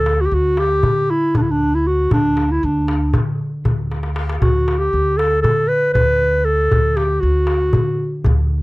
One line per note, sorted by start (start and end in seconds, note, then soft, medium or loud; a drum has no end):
0.00 0.29 D2 medium
0.00 0.22 A4 medium
0.06 darbuka tek medium
0.21 0.27 F#4 medium
0.26 0.36 G4 medium
0.32 0.80 D2 medium
0.32 0.61 F#4 medium
0.32 darbuka ka soft
0.57 1.12 G4 medium
0.57 darbuka tek medium
0.83 1.32 D3 medium
0.83 darbuka dum medium
1.10 1.38 E4 medium
1.35 2.08 D2 medium
1.35 1.43 D4 medium
1.35 darbuka dum medium
1.42 1.52 E4 medium
1.48 1.76 D4 medium
1.48 darbuka ka soft
1.60 darbuka ka soft
1.73 1.89 E4 medium
1.73 darbuka ka soft
1.87 2.12 F#4 medium
2.11 2.60 D2 medium
2.11 2.53 D4 medium
2.11 darbuka dum medium
2.37 darbuka tek medium
2.51 2.66 E4 medium
2.63 3.11 D2 medium
2.63 3.21 D4 medium
2.63 darbuka ka soft
2.88 darbuka tek medium
3.13 3.63 D3 medium
3.13 darbuka dum loud
3.39 darbuka ka soft
3.65 4.38 D2 medium
3.65 darbuka dum medium
3.79 darbuka ka soft
3.92 darbuka tek soft
4.03 darbuka ka medium
4.16 darbuka tek medium
4.30 darbuka ka medium
4.41 4.90 D2 medium
4.41 4.80 F#4 medium
4.41 darbuka dum medium
4.68 darbuka tek medium
4.79 5.19 G4 medium
4.93 5.42 D2 medium
4.93 darbuka ka soft
5.17 5.41 A4 medium
5.17 darbuka tek medium
5.42 5.93 D3 medium
5.42 5.69 A4 medium
5.42 darbuka dum medium
5.68 5.92 B4 loud
5.93 6.68 D2 medium
5.93 6.46 B4 medium
5.93 darbuka dum medium
6.21 darbuka ka soft
6.34 darbuka ka soft
6.45 6.98 A4 medium
6.71 7.21 D2 medium
6.71 darbuka dum medium
6.96 7.22 G4 medium
6.96 darbuka tek medium
7.20 7.72 D2 medium
7.20 8.25 F#4 medium
7.20 darbuka ka soft
7.47 darbuka tek medium
7.73 8.24 D3 medium
7.73 darbuka dum medium
8.24 8.62 D2 medium
8.24 darbuka dum medium
8.38 darbuka ka soft
8.51 darbuka ka soft